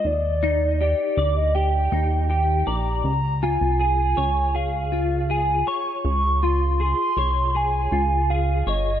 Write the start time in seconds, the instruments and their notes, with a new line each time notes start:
Already playing: clean electric guitar F4 C5 D#5
0.05 analog synth bass D#2, soft synth lead D5
0.43 clean electric guitar D#4
0.81 clean electric guitar G4, soft synth lead D5
1.17 analog synth bass D2, clean electric guitar D5
1.37 soft synth lead D#5
1.55 clean electric guitar G4, soft synth lead G5
1.92 analog synth bass D#2, clean electric guitar D#4
2.29 clean electric guitar G4, soft synth lead G5
2.67 analog synth bass A#1, clean electric guitar D5, soft synth lead A#5
3.04 analog synth bass C#2, soft synth lead A#5
3.43 clean electric guitar F4, soft synth lead G#5
3.61 analog synth bass C2
3.79 clean electric guitar G#4, soft synth lead G#5
4.17 analog synth bass C#2, clean electric guitar C#5
4.55 clean electric guitar G#4, soft synth lead F5
4.92 clean electric guitar F4
5.30 clean electric guitar G#4, soft synth lead G#5
5.67 clean electric guitar C#5, soft synth lead C#6
6.05 analog synth bass C#2, soft synth lead C#6
6.43 clean electric guitar F4, soft synth lead C6
6.80 clean electric guitar G#4, soft synth lead C6
7.17 analog synth bass C2, clean electric guitar C#5
7.55 clean electric guitar G#4, soft synth lead G#5
7.92 analog synth bass C#2, clean electric guitar F4
8.30 clean electric guitar G#4, soft synth lead F5
8.67 analog synth bass G1, clean electric guitar C#5, soft synth lead D#5